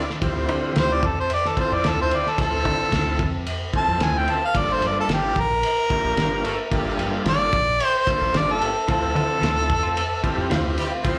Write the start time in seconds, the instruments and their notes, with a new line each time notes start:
0.10 snare
0.21 fingered electric bass D2, horn section F3 C4 C5, tonewheel organ C4 E4 F4 G4, kick, ride
0.49 fingered electric bass D3, ride
0.76 fingered electric bass D2, harmonica C5, snare, ride
0.94 harmonica D5
1.03 fingered electric bass F2, harmonica A4, kick, ride
1.20 harmonica C5
1.30 harmonica D5, ride
1.45 harmonica A4, snare
1.56 tonewheel organ C4 E4 F4 A4, horn section C4 E4 F4 C5, kick, ride
1.60 harmonica C5
1.72 fingered electric bass F2, harmonica D5
1.84 fingered electric bass D2, snare, ride
1.88 harmonica A4
2.02 harmonica C5
2.10 horn section C4 E4 F4 C5, ride
2.16 harmonica D5
2.27 harmonica A4, snare
2.37 fingered electric bass D2, horn section F3 C4 C5, tonewheel organ C4 E4 F4 A4, kick, ride
2.42 harmonica A4
2.65 fingered electric bass D3, kick, ride
2.92 fingered electric bass D2, kick, snare, ride
3.19 fingered electric bass F2, kick, ride
3.47 ride
3.72 tonewheel organ C4 E4 F4 A4, horn section C4 E4 F4 C5, kick, ride
3.77 harmonica A5
3.88 fingered electric bass F2
4.00 fingered electric bass D2, harmonica G#5, snare, ride
4.18 harmonica G5
4.26 horn section C4 E4 F4 C5, ride
4.31 harmonica A5
4.46 harmonica F5
4.54 fingered electric bass G1, horn section A3 A#3 F4 A4, tonewheel organ A#3 D4 F4 A4, kick, ride
4.58 harmonica D5
4.73 harmonica C5
4.81 fingered electric bass G2, ride
4.87 harmonica D5
5.01 harmonica A4
5.08 fingered electric bass G1, snare, ride
5.14 harmonica G4
5.36 fingered electric bass A#1, kick, ride
5.40 harmonica A#4
5.63 ride
5.89 horn section A3 A#3 F4 A4, tonewheel organ A#3 D4 F4 G4, kick, ride
6.04 fingered electric bass A#1
6.17 fingered electric bass G1, snare, ride
6.44 horn section A3 A#3 F4 A4, ride
6.70 fingered electric bass G1, horn section G3 A#3 F4 G4, tonewheel organ A#3 D4 F4 A4, kick, ride
6.98 fingered electric bass G2, ride
7.25 fingered electric bass G1, harmonica D5, snare, ride
7.53 fingered electric bass A#1, kick, ride
7.80 ride
7.85 harmonica C5
8.06 horn section A3 A#3 F4 A4, tonewheel organ A#3 D4 F4 A4, kick, ride
8.10 harmonica C5
8.21 fingered electric bass A#1
8.34 fingered electric bass G1, harmonica D5, snare, ride
8.52 harmonica A4
8.60 horn section G3 A#3 F4 G4, ride
8.87 fingered electric bass D2, clean electric guitar E3 A3 C4 F4, horn section F3 C4, tonewheel organ C4 E4 F4 A4, kick, ride
8.92 harmonica A4
9.15 fingered electric bass D3, ride
9.42 fingered electric bass D2, clean electric guitar E3 A3 C4 F4, snare, ride
9.70 fingered electric bass F2, kick, ride
9.83 clean electric guitar A3 C4 F4
9.97 ride
10.23 horn section G3 C4 E4 G4, tonewheel organ C4 E4 F4 G4, kick, ride
10.38 fingered electric bass F2
10.50 fingered electric bass D2, clean electric guitar E3 A3 C4 F4, snare, ride
10.77 horn section G3 C4 E4 G4, ride
10.91 clean electric guitar A3 C4 F4
11.03 fingered electric bass D2, horn section F3 C4, tonewheel organ C4 E4 F4 C5, kick, ride